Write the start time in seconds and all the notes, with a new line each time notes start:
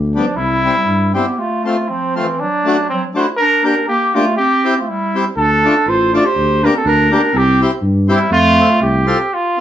Already playing: D2
0.14 F3 G3 B3 D4
0.35 C2 G3 E4
0.65 G3 C4 E4
0.86 G2
1.14 G3 B3 C4 E4 G4
1.38 A3 F4
1.65 A3 C4 F4
1.89 F3 C4
2.15 A3 C4 F4
2.21 E3
2.40 F#3 D4
2.65 A3 D4 F#4
2.89 C4
2.93 F#3
3.15 A3 D4 F#4 C5
3.19 E4
3.37 D4 A#4
3.63 A#3 D4 G4 A#4
3.67 D4
3.87 A#3 G4
4.15 A3 A#3 D4 F4 G4
4.37 C4 G4
4.64 C4 E4 G4
4.79 A3 F4
4.88 G3 E4
5.15 C4 E4 G4
5.36 D2 D4 A4
5.64 A3 D4 F4
5.86 A1 F4 C5
6.13 A3 D4 F4 D5
6.23 G4 C5
6.36 D2
6.63 A#3 D4 G4 A#4
6.73 C4 A4
6.84 D2 D4 A#4
7.11 A#3 D4 G4 A#4
7.33 C2 C4
7.37 G4
7.61 C4 E4 G4
7.82 G2
8.08 G3 C4 E4 G4
8.30 F2 A3 F4
8.58 C4 F4 A4
8.80 C2 G4
9.06 C4 F4 A4
9.34 F4